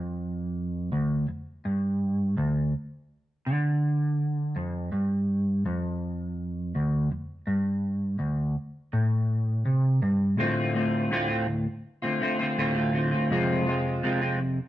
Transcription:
Already playing: F2
0.92 D2
1.28 F2
1.65 G2
2.37 D2
3.46 D3
4.56 F2
4.92 G2
5.66 F2
6.75 D2
7.12 F2
7.47 G2
8.19 D2
8.93 A2
9.65 C3
10.02 G2
10.37 D2 A2 D3 A3 C4 F4
10.74 D3 A3 C4 F4
11.10 D2 A2 D3 A3 C4 F4
11.28 D3 A3 C4 F4
11.47 muted clean electric guitar stroke
12.02 D3 A3 C4 F4
12.21 D3 A3 C4 F4
12.39 D3 A3 C4 F4
12.57 D2 A2 D3 A3 C4 F4
12.75 D3 A3 C4 F4
12.93 D3 A3 C4 F4
13.11 D3 A3 C4 F4
13.30 F2 C3 F3 G#3 C4 F4
13.66 F3 G#3 C4 F4
14.03 F2 C3 F3 G#3 C4 F4
14.21 F3 G#3 C4 F4
14.40 muted clean electric guitar stroke

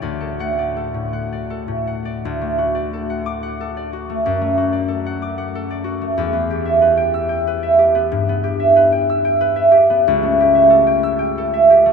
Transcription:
Already playing: A4
0.02 D2 D5
0.21 A4
0.39 A3 F#5
0.59 D5
0.77 A4
0.94 A2
1.13 F#5
1.33 D5
1.50 A4
1.68 A2
1.87 F#5
2.05 D5
2.25 D2
2.41 A3
2.58 F#4
2.75 D5
2.93 A4
3.10 F#5
3.26 D6
3.43 F#5
3.60 A4
3.77 D5
3.93 F#4
4.10 A3
4.26 F#2
4.41 A3
4.57 F#4
4.73 D5
4.88 A4
5.06 F#5
5.22 D6
5.38 F#5
5.55 A4
5.70 D5
5.84 F#4
6.01 A3
6.18 E2
6.33 B3
6.50 G4
6.66 E5
6.81 B4
6.97 G5
7.14 E6
7.29 G5
7.47 B4
7.63 E5
7.79 G4
7.95 B3
8.12 G2
8.29 B3
8.44 G4
8.60 E5
8.76 B4
8.92 G5
9.10 E6
9.25 G5
9.41 B4
9.56 E5
9.72 G4
9.90 B3
10.08 C#2
10.23 A3
10.40 G4
10.55 E5
10.70 A4
10.87 G5
11.03 E6
11.19 G5
11.38 A4
11.54 E5
11.70 G4
11.86 A3

